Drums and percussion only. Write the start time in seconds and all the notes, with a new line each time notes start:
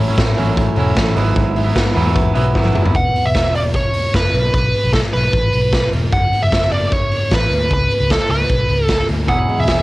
0.18 kick, snare, closed hi-hat
0.38 open hi-hat
0.57 kick, closed hi-hat
0.76 open hi-hat
0.96 kick, snare, closed hi-hat
1.16 open hi-hat
1.36 kick, closed hi-hat
1.56 open hi-hat
1.76 kick, snare, closed hi-hat
1.96 open hi-hat
2.16 kick, closed hi-hat
2.35 open hi-hat
2.55 kick, snare
2.65 high tom
2.75 mid tom
2.85 floor tom
2.95 kick, closed hi-hat
3.16 open hi-hat
3.35 kick, snare, closed hi-hat
3.55 open hi-hat
3.73 kick, closed hi-hat
3.93 open hi-hat
4.14 kick, snare, closed hi-hat
4.34 open hi-hat
4.54 kick, closed hi-hat
4.75 open hi-hat
4.93 kick, snare, closed hi-hat
5.13 open hi-hat
5.33 kick, closed hi-hat
5.52 open hi-hat
5.72 kick, snare, closed hi-hat
5.93 open hi-hat
6.13 kick, closed hi-hat
6.33 open hi-hat
6.52 kick, snare, closed hi-hat
6.72 open hi-hat
6.92 kick, closed hi-hat
7.11 open hi-hat
7.31 kick, snare, closed hi-hat
7.51 open hi-hat
7.70 kick, closed hi-hat
7.91 open hi-hat
8.10 kick, snare, closed hi-hat
8.30 open hi-hat
8.49 kick, closed hi-hat
8.69 open hi-hat
8.88 kick, snare, closed hi-hat
9.09 open hi-hat
9.28 kick, closed hi-hat
9.49 open hi-hat
9.67 kick, snare, closed hi-hat